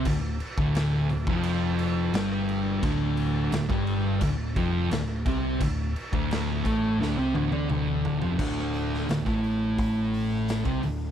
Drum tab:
CC |x-x-x-x-x-x-x-x-|x-x-x-x-x-x-x-x-|x-x-x-x---------|x---------------|
HH |----------------|----------------|----------------|--o-o-o-o-o-o-o-|
SD |----o-------o---|----o-------o---|----o---o-------|-o-oo-------o---|
T1 |----------------|----------------|----------oo----|----------------|
T2 |----------------|----------------|------------o---|----------------|
FT |----------------|----------------|--------------oo|----------------|
BD |o--o---o--------|o----o--o-o---o-|o--o--o---------|o----o--o----o--|